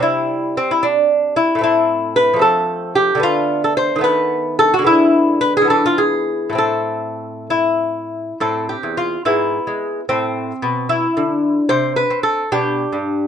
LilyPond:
<<
  \new Staff \with { instrumentName = "Lute" } { \time 6/8 \key c \major \tempo 4. = 74 e'4 c'16 e'16 d'4 e'8 | \key a \minor e'4 b'8 a'4 g'8 | f'8. a'16 c''8 b'4 a'16 fis'16 | e'4 b'16 gis'16 a'16 f'16 gis'4 |
a'4. e'4. | a'8 g'8 f'8 e'4. | c'4. e'4. | c''8 b'8 a'8 g'4. | }
  \new Staff \with { instrumentName = "Lute" } { \clef bass \time 6/8 \key c \major << { <c g c'>2. | \key a \minor <a, a c'>4. <f a c'>4. | <d a b>4. <dis a b>4. | <d gis b>4. <e b d'>4. |
<a, a c'>2. | c'4. b4. | r2. | c'4. d'4. | } \\ { r2. | r2. | r2. | r2. |
r2. | a,8. e,8. gis,8. gis8. | a,4 b,4 d4 | c8. c'8. b,8. g,8. | } >> }
>>